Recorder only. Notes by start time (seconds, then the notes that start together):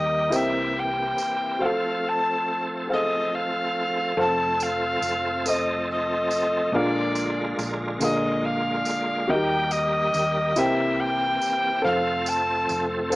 Already playing: D#5
0.36 E5
0.79 G5
1.65 F5
2.09 A5
2.93 D#5
3.34 F5
4.20 A5
4.63 F5
5.47 D#5
5.91 D#5
6.75 D5
8.03 D#5
8.45 F5
9.30 G5
9.71 D#5
10.58 E5
11.00 G5
11.85 F5
12.29 A5